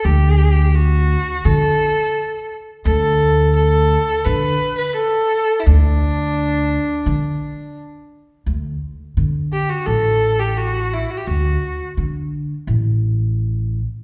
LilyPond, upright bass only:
\new Staff \with { instrumentName = "Upright bass" } { \clef bass \time 4/4 \tempo 4 = 86 d,2 d8 r4. | d,2 d8 r4. | d,2 d8 r4. | d,8 r8 d4 a,,2 |
d,8 r8 d4 a,,2 | }